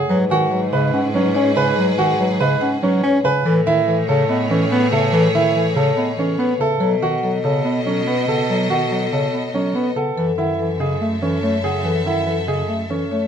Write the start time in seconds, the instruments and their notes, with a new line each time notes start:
Already playing: grand piano G#4, marimba F#5
0.09 cello G#2, bass clarinet F#3, violin section G#4 B4, marimba B4
0.30 bass clarinet D#3, grand piano F#4, marimba G#5
0.52 bass clarinet F#3, marimba B4
0.73 bass clarinet C#3, grand piano B4, marimba D#5
0.93 bass clarinet C#4, marimba F#5
1.14 bass clarinet F#3, grand piano C#4, marimba B4
1.35 bass clarinet C#4, marimba C#5
1.56 bass clarinet C#3, grand piano B4, marimba G#5
1.76 bass clarinet F#3, marimba B4
1.98 bass clarinet D#3, grand piano F#4, marimba G#5
2.19 bass clarinet F#3, marimba B4
2.40 bass clarinet C#3, grand piano B4, marimba D#5
2.61 bass clarinet C#4, marimba F#5
2.83 bass clarinet F#3, grand piano C#4, marimba B4
3.03 bass clarinet C#4, marimba C#5
3.24 bass clarinet C#3, grand piano B4, marimba G#5
3.45 cello A2, bass clarinet E3, violin section G#4 C#5, marimba A4
3.66 bass clarinet D#3, grand piano E4, marimba E5
3.88 bass clarinet E3, marimba A4
4.08 bass clarinet C#3, grand piano A4, marimba C#5
4.29 bass clarinet B3, marimba D#5
4.50 bass clarinet E3, grand piano C#4, marimba A4
4.72 bass clarinet B3, marimba B4
4.92 bass clarinet C#3, grand piano A4, marimba E5
5.13 bass clarinet E3, marimba A4
5.35 bass clarinet D#3, grand piano E4, marimba E5
5.56 bass clarinet E3, marimba A4
5.76 bass clarinet C#3, grand piano A4, marimba C#5
5.97 bass clarinet B3, marimba D#5
6.18 bass clarinet E3, grand piano C#4, marimba A4
6.39 bass clarinet B3, marimba B4
6.60 bass clarinet C#3, grand piano A4, marimba E5
6.80 cello B2, bass clarinet F#3, marimba A4, violin section A4 D#5
7.02 bass clarinet D#3, grand piano F#4, marimba F#5
7.23 bass clarinet F#3, marimba A4
7.44 bass clarinet C#3, grand piano A4, marimba C#5
7.65 bass clarinet B3, marimba D#5
7.86 bass clarinet F#3, grand piano C#4, marimba A4
8.07 bass clarinet B3, marimba B4
8.28 bass clarinet C#3, grand piano A4, marimba F#5
8.50 bass clarinet F#3, marimba A4
8.70 bass clarinet D#3, grand piano F#4, marimba F#5
8.91 bass clarinet F#3, marimba A4
9.12 bass clarinet C#3, grand piano A4, marimba C#5
9.34 bass clarinet B3, marimba D#5
9.54 bass clarinet F#3, grand piano C#4, marimba A4
9.75 bass clarinet B3, marimba B4
9.96 bass clarinet C#3, grand piano A4, marimba F#5
10.17 cello F#2, bass clarinet E3, violin section A4 E5, marimba A4
10.38 bass clarinet D#3, grand piano E4, marimba F#5
10.59 bass clarinet E3, marimba A4
10.80 bass clarinet C#3, grand piano G#4, marimba D#5
11.02 bass clarinet A3, marimba E5
11.22 bass clarinet E3, grand piano C#4, marimba A4
11.43 bass clarinet A3, marimba C#5
11.64 bass clarinet C#3, grand piano G#4, marimba F#5
11.84 bass clarinet E3, marimba A4
12.05 bass clarinet D#3, grand piano E4, marimba F#5
12.26 bass clarinet E3, marimba A4
12.47 bass clarinet C#3, grand piano G#4, marimba D#5
12.69 bass clarinet A3, marimba E5
12.90 bass clarinet E3, grand piano C#4, marimba A4
13.11 bass clarinet A3, marimba C#5